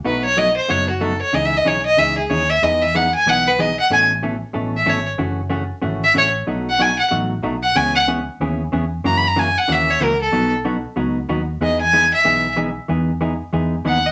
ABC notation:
X:1
M:4/4
L:1/8
Q:"Swing" 1/4=187
K:E
V:1 name="Fiddle"
B c d =c ^c F A c | (3d e d c d e G c e | d e f g f B d f | g z4 e c z |
z4 z e c z | z f g f z3 f | g f z6 | (3^a b a g f e c ^A =A- |
A z6 z | d g2 e3 z2 | z6 f d |]
V:2 name="Hollow-body jazz guitar"
[B,,F,A,DF] z [B,,F,A,DF] z [B,,F,A,DF] z [B,,F,A,DF] z | [C,E,DG] z [C,E,DG] z [C,E,DG] z [C,E,DG] z | [E,G,B,DG] z [E,G,B,DG] z [E,G,B,DG] z [E,G,B,DG] z | [B,,E,A,CA] z [B,,E,A,CA] z [B,,E,A,CA] z [B,,E,A,CA] z |
[C,E,A,CF] z [C,E,A,CF] z [C,E,A,CF] z [C,E,A,CF] z | [B,,F,A,DF] z [B,,F,A,DF] z [B,,F,A,DF] z [B,,F,A,DF] z | [C,E,B,CG] z [C,E,B,CG] z [C,E,B,CG] z [C,E,B,CG] z | [C,E,^A,CF] z [C,E,A,CF] z [C,E,A,CF] z [C,E,A,CF] z |
[B,,F,B,DF] z [B,,F,B,DF] z [B,,F,B,DF] z [B,,F,B,DF] z | [E,G,B,DG] z [E,G,B,DG] z [E,G,B,DG] z [E,G,B,DG] z | [E,G,B,DG] z [E,G,B,DG] z [E,G,B,DG] z [E,G,B,DG] z |]
V:3 name="Fingered electric bass" clef=bass
B,,,4 F,,,4 | C,,2 B,,,2 C,,2 D,,2 | E,,4 B,,,4 | A,,,4 A,,,2 G,,,2 |
F,,,4 G,,,2 A,,,2 | B,,,4 A,,,2 B,,,2 | C,,4 D,,2 E,,2 | F,,4 D,,2 C,,2 |
B,,,4 C,,2 D,,2 | E,,4 B,,,4 | E,,4 E,,2 D,,2 |]